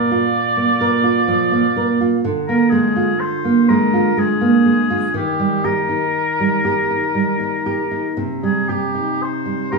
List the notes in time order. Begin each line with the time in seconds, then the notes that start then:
Already playing: A#2 A#4 D5
0.11 F4
0.57 A#3
0.81 A#4
1.04 F4
1.28 F3
1.52 A#3
1.76 A#4
2.01 F4
2.25 D3
2.48 A#3 A#4
2.70 G#3 G#4
2.96 F4
3.20 C5
3.45 A#3
3.69 G#3 A#4
3.94 F4
4.17 G#3 G#4
4.41 A#3
4.65 G#3
4.90 F4
5.14 D#3 G4
5.39 G3
5.64 G4 A#4
5.89 D#4
6.40 G3
6.65 G4
6.91 D#4
7.15 G3
7.40 D#4
7.66 G4
7.91 D#4
8.17 C3
8.43 G3 G#4
8.68 G4
8.95 D#4
9.22 C5
9.46 G3
9.72 G4 A#4